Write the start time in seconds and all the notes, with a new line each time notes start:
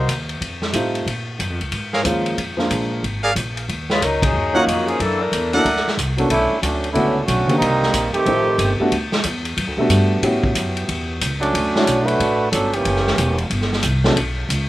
Already playing: D#4 F#4
0.08 D#2, kick, hi-hat pedal, ride
0.29 ride
0.41 F2, kick, ride
0.62 snare
0.73 A2 G3 A3 C4 D#4 F4, kick, hi-hat pedal, ride
0.95 ride
1.06 A#2, kick, ride
1.39 F#2, kick, hi-hat pedal, ride
1.50 F2
1.60 C#2, ride
1.72 G#2, kick, ride
1.93 G#4 A#4 C#5 F5, snare
2.03 D#2 F3 G#3 A#3 C#4 F4, kick, hi-hat pedal, ride
2.26 ride
2.37 F2, kick, ride
2.57 F3 G#3 A#3 D4 F4, snare
2.70 A#1, kick, hi-hat pedal, ride
3.03 G#1, kick, ride
3.23 G#4 A#4 D5 F5
3.36 A#1, kick, hi-hat pedal, ride
3.57 ride
3.69 D#2, kick, ride
3.90 G#3 C#4 F4 B4, snare
4.01 C#2 F#3 C#4 D#4 A#4, kick, hi-hat pedal, ride
4.22 F#3 C#4 D#4 G#4, kick, ride
4.33 D#2
4.54 D#3 F#3 A#3 C#4 D#4 F4 F#4 A#4 C#5 D#5 F#5
4.66 F2 D#3 A#3 C#4 F#4, kick, hi-hat pedal, ride
4.87 F3 A#3 C#4 G#4, ride
5.00 F#2 E3 A#3 D4 A4, kick, ride
5.20 E3 D4 A4 A#4
5.32 E2, kick, hi-hat pedal, ride
5.53 F#3 A#3 D4 E4 A4 A#4 D5 E5 F#5, ride
5.64 D2, kick, ride
5.76 snare
5.87 snare
5.97 C2, kick, hi-hat pedal, ride
6.17 E3 F#3 A#3 B3 C#4 D4 F#4 A4, ride
6.30 B1 A3 C#4 D4 E4, kick, ride
6.52 muted upright bass stroke
6.61 D2 F#3 A3 C#4 D4, kick, hi-hat pedal, ride
6.84 ride
6.93 C#2 D3 A3 B3 C#4 D4 E4 F#4, kick, ride
7.25 B1 D3 A3 C#4 F#4, kick, hi-hat pedal, ride
7.47 D#3 A#3 C4 D4 G4, muted upright bass stroke, ride
7.58 C2 G3 A#3 C4 D#4, kick, ride
7.83 snare
7.94 A#1, kick, hi-hat pedal, ride
8.14 D#3 A3 C4 G4, muted upright bass stroke, ride
8.26 A1 F3 A3 C4 D#4 G4, kick, ride
8.58 G1, kick, hi-hat pedal, ride
8.80 G3 A3 B3 D4 F#4, muted upright bass stroke
8.91 D2, kick, ride
9.12 snare
9.24 E2, kick, hi-hat pedal, ride
9.45 ride
9.57 F#2, kick, ride
9.67 D2
9.77 B1 G3 A3 B3 D4 F#4
9.89 G2, kick, hi-hat pedal, ride
10.22 A2 B3 C#4 E4 F#4 G4, kick, ride
10.43 kick
10.55 F#2, kick, hi-hat pedal, ride
10.77 ride
10.88 E2, kick, ride
11.21 C#2, kick, hi-hat pedal, ride
11.41 F#3 A3 C#4 D4, ride
11.54 D2, kick, ride
11.75 A3 D4 E4 F#4 C#5, snare
11.86 B1, kick, hi-hat pedal, ride
12.04 A3 D4 F#4 B4, ride
12.20 A1, kick, ride
12.52 G1 F#3 C#4 D4 A4, kick, hi-hat pedal, ride
12.73 E3 A#3 C#4 G4, ride
12.85 F#1, kick, ride
12.96 snare
13.07 snare
13.18 E1, kick, hi-hat pedal, ride
13.38 ride
13.50 G1, kick, ride
13.61 snare
13.73 snare
13.83 C2, kick, hi-hat pedal, ride
14.04 F#3 B3 C#4 D4 A4, snare
14.16 B1, kick, ride
14.49 C#2, kick, hi-hat pedal, ride